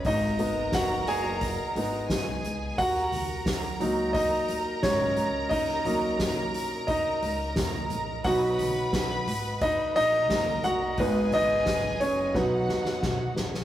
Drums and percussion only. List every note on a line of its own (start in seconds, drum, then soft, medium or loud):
0.05 kick loud
0.05 hi-hat pedal medium
0.05 open hi-hat medium
0.21 snare soft
0.39 floor tom medium
0.39 hi-hat pedal medium
0.39 open hi-hat medium
0.72 kick loud
0.72 snare loud
0.72 hi-hat pedal medium
0.72 open hi-hat medium
1.07 hi-hat pedal medium
1.07 open hi-hat medium
1.41 kick loud
1.41 hi-hat pedal medium
1.41 open hi-hat medium
1.76 hi-hat pedal medium
1.76 open hi-hat medium
2.10 kick loud
2.10 snare loud
2.10 hi-hat pedal medium
2.10 open hi-hat medium
2.27 floor tom medium
2.44 hi-hat pedal medium
2.44 open hi-hat medium
2.78 kick loud
2.78 hi-hat pedal medium
2.78 open hi-hat medium
2.95 snare soft
3.12 floor tom medium
3.12 hi-hat pedal medium
3.12 open hi-hat medium
3.46 kick loud
3.46 snare loud
3.46 hi-hat pedal medium
3.46 open hi-hat medium
3.81 hi-hat pedal medium
3.81 open hi-hat medium
4.14 kick loud
4.14 hi-hat pedal medium
4.14 open hi-hat medium
4.48 hi-hat pedal medium
4.48 open hi-hat medium
4.83 kick loud
4.83 snare loud
4.83 hi-hat pedal medium
4.83 open hi-hat medium
5.00 floor tom medium
5.17 hi-hat pedal medium
5.17 open hi-hat medium
5.51 kick loud
5.51 hi-hat pedal medium
5.51 open hi-hat medium
5.68 snare soft
5.85 floor tom medium
5.85 hi-hat pedal medium
5.85 open hi-hat medium
6.19 kick loud
6.19 snare loud
6.19 hi-hat pedal medium
6.19 open hi-hat medium
6.54 hi-hat pedal medium
6.54 open hi-hat medium
6.88 kick loud
6.88 hi-hat pedal medium
6.88 open hi-hat medium
7.23 hi-hat pedal medium
7.23 open hi-hat medium
7.56 kick loud
7.56 snare loud
7.56 hi-hat pedal medium
7.56 open hi-hat medium
7.74 floor tom medium
7.90 floor tom medium
7.90 hi-hat pedal medium
7.90 open hi-hat medium
8.24 kick loud
8.24 hi-hat pedal medium
8.24 open hi-hat medium
8.59 floor tom medium
8.59 hi-hat pedal medium
8.59 open hi-hat medium
8.93 kick loud
8.93 snare loud
8.93 hi-hat pedal medium
8.93 open hi-hat medium
9.27 hi-hat pedal medium
9.27 open hi-hat medium
9.61 kick loud
9.61 hi-hat pedal medium
9.61 open hi-hat medium
9.96 hi-hat pedal medium
9.96 open hi-hat medium
10.30 kick loud
10.30 snare loud
10.30 hi-hat pedal medium
10.30 open hi-hat medium
10.47 floor tom medium
10.64 floor tom medium
10.64 hi-hat pedal medium
10.64 open hi-hat medium
10.98 kick loud
10.98 hi-hat pedal medium
10.98 open hi-hat medium
11.32 floor tom medium
11.32 hi-hat pedal medium
11.32 open hi-hat medium
11.66 kick loud
11.66 snare loud
11.66 hi-hat pedal medium
11.66 open hi-hat medium
12.01 hi-hat pedal medium
12.01 open hi-hat medium
12.35 kick loud
12.35 snare medium
12.69 snare medium
12.85 snare medium
13.02 kick loud
13.02 snare medium
13.36 snare loud
13.54 snare medium